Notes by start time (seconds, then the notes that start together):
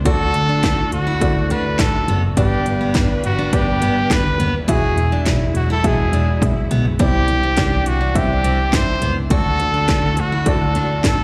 0.05 D2 D3 A3 F#4 A4 D5, kick, closed hi-hat
0.34 D2, closed hi-hat
0.49 D4
0.63 D2 E4, kick, snare, clap, closed hi-hat
0.92 D2 F#4, closed hi-hat
1.07 E4
1.21 D2 A3 F#4 D5, kick, closed hi-hat
1.50 D2 D4 B4, closed hi-hat
1.79 A2 A4, kick, snare, clap, closed hi-hat
2.08 F#1 B3, closed hi-hat, floor tom
2.37 G1 G2 G3 B3 D4 G4 B4 D5, kick, closed hi-hat
2.66 G1, closed hi-hat
2.81 B3
2.94 G1 D4, kick, snare, clap, closed hi-hat
3.24 G1 F#4, closed hi-hat
3.39 D4
3.53 G1 B3 G4 D5, kick, closed hi-hat
3.81 G1 B3, closed hi-hat
4.10 D2 B4, kick, snare, clap, closed hi-hat
4.39 D#2 B3, closed hi-hat, floor tom
4.67 E1 E3 F#3 G#3 E4 F#4 G#4 E5, kick, closed hi-hat
4.96 E1, closed hi-hat
5.12 D4
5.26 E1 E4, kick, snare, clap, closed hi-hat
5.54 E1 F#4, closed hi-hat
5.70 E4 A4
5.84 E1 G#3 F#4 G#4 E5, kick, closed hi-hat
6.12 E1 D4, closed hi-hat
6.42 B1, kick, closed hi-hat, high tom
6.71 B1 B3, closed hi-hat, mid tom
6.85 floor tom
6.99 C2 C3 E3 C4 D4 E4 G4 D5, kick, closed hi-hat
7.28 C2, closed hi-hat
7.43 C4
7.57 C2 D4, kick, snare, clap, closed hi-hat
7.86 C2 F#4, closed hi-hat
8.01 D4
8.15 C2 C4 E4 G4 E5, kick, closed hi-hat
8.44 C2 C4, closed hi-hat
8.73 G2 C5, kick, snare, clap, closed hi-hat
9.02 C#2 B3, closed hi-hat, floor tom
9.30 D2 D3 A3 F#4 A4 D5, kick, closed hi-hat
9.60 D2, closed hi-hat
9.74 D4
9.88 D2 E4, kick, snare, clap, closed hi-hat
10.17 D2 F#4, closed hi-hat
10.32 E4
10.46 D2 A3 F#4 A4 D5, kick, closed hi-hat
10.75 D2 D4, closed hi-hat
11.04 A2 A4, kick, snare, clap, closed hi-hat